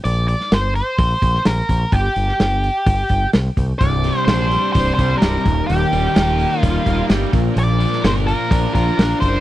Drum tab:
HH |o-o-o-o-o-o-o-o-|o-o-o-o-o-o-o-o-|o-o-o-o-o-o-o-o-|o-o-o-o-o-o-o-o-|
SD |---oo------oo---|---oo-------o---|---oo-------o---|----o-------o---|
BD |--------o-o---o-|o-------o-o---o-|o-------o-o---o-|--------o-o---o-|

HH |o-o-o-o-o-o-o-o-|
SD |---oo-------o---|
BD |--------o-o---o-|